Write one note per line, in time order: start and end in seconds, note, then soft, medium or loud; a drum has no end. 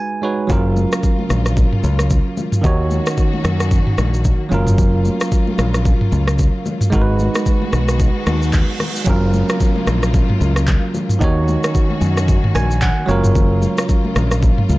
0.00 0.18 G#3 medium
0.00 0.19 D#4 medium
0.00 0.20 F#4 medium
0.00 0.21 B4 medium
0.00 0.21 G#5 medium
0.22 0.49 G#3 medium
0.22 0.50 D#4 medium
0.22 0.50 F#4 medium
0.22 0.51 B4 medium
0.22 0.48 C#5 medium
0.47 0.84 F#1 loud
0.47 2.62 C#3 medium
0.47 2.59 F#3 medium
0.47 9.03 F#3 medium
0.47 6.89 A#3 medium
0.47 2.60 C#4 medium
0.47 2.62 F4 medium
0.47 2.60 F4 medium
0.47 kick loud
0.47 low conga medium
0.47 shaker medium
0.52 2.61 A#4 medium
0.76 high conga medium
0.76 shaker medium
0.92 cross-stick loud
0.92 shaker medium
1.03 kick loud
1.03 shaker medium
1.19 high conga medium
1.29 1.65 A#1 medium
1.29 cross-stick medium
1.29 high conga medium
1.29 low conga medium
1.29 shaker medium
1.46 cross-stick medium
1.46 shaker medium
1.57 kick loud
1.57 shaker medium
1.73 mid tom medium
1.84 2.18 C#2 medium
1.84 high conga medium
1.84 shaker medium
1.99 cross-stick loud
1.99 shaker medium
2.10 kick loud
2.10 shaker medium
2.37 high conga medium
2.37 low conga medium
2.37 shaker medium
2.52 mid tom medium
2.52 shaker medium
2.61 2.99 D#2 loud
2.61 4.46 D#3 medium
2.61 4.50 D#3 medium
2.61 4.50 C#4 medium
2.61 4.47 D#4 medium
2.61 4.50 F#4 medium
2.61 4.48 F#4 medium
2.61 kick loud
2.61 low conga medium
2.61 shaker medium
2.67 4.49 C#5 medium
2.91 high conga medium
2.91 shaker soft
3.06 cross-stick loud
3.06 shaker medium
3.18 kick medium
3.18 shaker medium
3.33 high conga medium
3.44 3.79 F#2 medium
3.44 cross-stick loud
3.44 high conga medium
3.44 low conga medium
3.44 shaker medium
3.60 cross-stick medium
3.60 shaker medium
3.71 kick loud
3.71 shaker medium
3.87 mid tom medium
3.98 4.33 A#1 medium
3.98 cross-stick medium
3.98 high conga medium
3.98 shaker medium
4.14 shaker medium
4.24 kick medium
4.24 shaker medium
4.49 5.08 F#1 loud
4.49 6.90 C#3 medium
4.49 6.61 F#3 medium
4.49 6.61 C#4 medium
4.49 6.90 F4 medium
4.49 6.62 F4 medium
4.49 high conga medium
4.49 low conga medium
4.49 shaker medium
4.54 6.63 A#4 medium
4.67 mid tom loud
4.67 shaker medium
4.78 kick loud
4.78 low conga medium
4.78 shaker medium
5.05 high conga medium
5.05 shaker medium
5.21 cross-stick loud
5.21 shaker medium
5.32 kick loud
5.32 shaker medium
5.47 high conga medium
5.58 5.93 A#1 medium
5.58 cross-stick loud
5.58 high conga medium
5.58 low conga medium
5.58 shaker medium
5.74 cross-stick medium
5.74 shaker medium
5.85 kick loud
5.85 shaker medium
6.01 mid tom loud
6.12 6.47 C#2 medium
6.12 high conga medium
6.12 shaker medium
6.27 cross-stick loud
6.27 shaker medium
6.39 kick loud
6.39 shaker medium
6.66 high conga medium
6.66 low conga medium
6.66 shaker medium
6.81 mid tom loud
6.81 shaker medium
6.90 7.27 G#1 loud
6.90 9.05 D#3 medium
6.90 9.02 G#3 medium
6.90 9.05 G#3 medium
6.90 9.05 B3 medium
6.90 9.02 D#4 medium
6.90 9.05 F#4 medium
6.90 9.03 F#4 medium
6.90 kick loud
6.90 low conga medium
6.90 shaker medium
6.95 7.01 A#4 medium
7.02 9.07 B4 medium
7.19 high conga medium
7.19 shaker medium
7.35 cross-stick loud
7.35 shaker medium
7.46 kick loud
7.46 shaker medium
7.62 high conga medium
7.72 8.08 B1 medium
7.72 cross-stick medium
7.72 high conga medium
7.72 low conga medium
7.72 shaker medium
7.88 cross-stick medium
7.88 shaker medium
8.00 kick loud
8.00 reverse cymbal medium
8.00 shaker medium
8.26 8.61 D#2 medium
8.26 cross-stick loud
8.26 high conga medium
8.26 shaker medium
8.42 shaker medium
8.53 kick loud
8.53 clap medium
8.53 shaker medium
8.80 cross-stick medium
8.80 high conga medium
8.80 low conga medium
8.80 shaker medium
8.96 shaker medium
9.04 9.42 F#1 loud
9.04 11.19 C#3 medium
9.04 11.16 F#3 medium
9.04 14.79 F#3 medium
9.04 11.19 A#3 medium
9.04 11.17 C#4 medium
9.04 11.19 F4 medium
9.04 11.18 F4 medium
9.04 kick loud
9.04 downlifter medium
9.04 low conga medium
9.04 shaker medium
9.10 11.19 A#4 medium
9.33 high conga medium
9.33 shaker medium
9.49 cross-stick loud
9.49 shaker medium
9.60 kick loud
9.60 shaker medium
9.76 high conga medium
9.87 10.22 A#1 medium
9.87 cross-stick loud
9.87 high conga medium
9.87 low conga medium
9.87 shaker medium
10.03 cross-stick medium
10.03 shaker medium
10.14 kick loud
10.14 shaker medium
10.29 mid tom medium
10.29 high conga medium
10.41 10.75 C#2 medium
10.41 high conga medium
10.41 shaker medium
10.56 cross-stick loud
10.56 shaker medium
10.67 kick loud
10.67 clap medium
10.67 shaker medium
10.94 high conga medium
10.94 low conga medium
10.94 shaker medium
11.09 mid tom loud
11.09 shaker medium
11.19 11.56 D#2 loud
11.19 13.04 D#3 medium
11.19 13.07 D#3 medium
11.19 14.79 A#3 medium
11.19 13.07 C#4 medium
11.19 13.05 D#4 medium
11.19 13.07 F#4 medium
11.19 13.05 F#4 medium
11.19 kick loud
11.19 low conga medium
11.19 shaker medium
11.24 13.06 C#5 medium
11.48 high conga medium
11.48 shaker medium
11.64 cross-stick loud
11.64 shaker medium
11.75 kick loud
11.75 shaker medium
11.90 high conga medium
12.01 12.36 F#2 medium
12.01 high conga medium
12.01 low conga medium
12.01 shaker medium
12.17 cross-stick medium
12.17 shaker medium
12.28 kick loud
12.28 shaker medium
12.43 mid tom medium
12.43 high conga soft
12.55 12.90 A#1 medium
12.55 12.80 G#5 medium
12.55 cross-stick loud
12.55 high conga medium
12.55 shaker medium
12.71 shaker medium
12.81 13.07 F#5 medium
12.81 kick loud
12.81 clap medium
12.81 shaker medium
13.06 13.65 F#1 loud
13.06 14.79 C#3 medium
13.06 14.79 F#3 medium
13.06 14.79 C#4 medium
13.06 14.79 F4 medium
13.06 13.33 C#5 medium
13.06 high conga medium
13.06 low conga medium
13.06 shaker medium
13.11 14.79 A#4 medium
13.24 mid tom loud
13.24 shaker medium
13.35 kick loud
13.35 low conga medium
13.35 shaker medium
13.62 high conga medium
13.62 shaker medium
13.78 cross-stick loud
13.78 shaker medium
13.89 kick loud
13.89 shaker medium
14.05 high conga medium
14.15 14.50 A#1 medium
14.15 cross-stick loud
14.15 high conga medium
14.15 low conga medium
14.15 shaker medium
14.31 cross-stick medium
14.31 shaker medium
14.43 kick loud
14.43 shaker medium
14.57 mid tom medium
14.57 high conga soft
14.69 14.79 C#2 medium
14.69 high conga medium
14.69 shaker medium